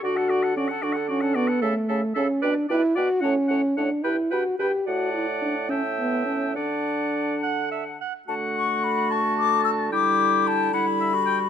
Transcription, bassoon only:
\new Staff \with { instrumentName = "Bassoon" } { \clef bass \time 6/8 \key d \major \tempo 4. = 73 d4. d4. | cis8 cis8 cis8 b,8 b,8 b,8 | a,8 a,8 a,8 g,8 g,8 g,8 | a,4. a,4. |
d2~ d8 r8 | d2.~ | d2. | }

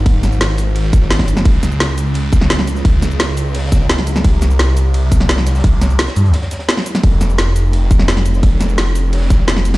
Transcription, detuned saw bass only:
\new Staff \with { instrumentName = "Detuned saw bass" } { \clef bass \time 4/4 \key c \phrygian \tempo 4 = 172 aes,,4 aes,,4. aes,,4. | des,1 | des,1 | c,1 |
c,4 r8 g,8 r2 | f,,1 | f,,1 | }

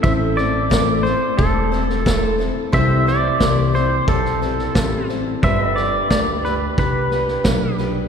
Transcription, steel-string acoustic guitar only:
\new Staff \with { instrumentName = "Steel-string acoustic guitar" } { \time 4/4 \key a \minor \tempo 4 = 89 <a, e a c' e' c''>8 <a c' e' c''>8 <a, e a c' e' c''>8 <a c' e' c''>8 <a c' e' c''>8 <a c' e' c''>8 <a, e a c' e' c''>8 <a c' e' c''>8 | <c e g c' e' c''>8 <g c' e' c''>8 <c e g c' e' c''>8 <g c' e' c''>8 <g c' e' c''>8 <g c' e' c''>8 <c e g c' e' c''>8 <g c' e' c''>8 | <g d' g' b'>8 <d' g' b'>8 <g d' g' b'>8 <d' g' b'>8 <g d' g' b'>8 <d' g' b'>8 <g d' g' b'>8 <d' g' b'>8 | }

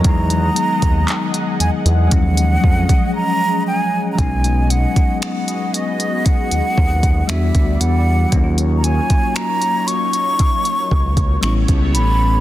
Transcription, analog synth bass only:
\new Staff \with { instrumentName = "Analog synth bass" } { \clef bass \time 4/4 \key ees \minor \tempo 4 = 58 e,8 r16 dis,16 r8 e,16 e,16 ees,8 f,16 r4 r16 | \key ces \lydian b,,8. r4. dis,16 dis,8 e,16 d,16 e,8 | ees,8. r4. r16 des,8 a,,16 cis,16 a,,8 | }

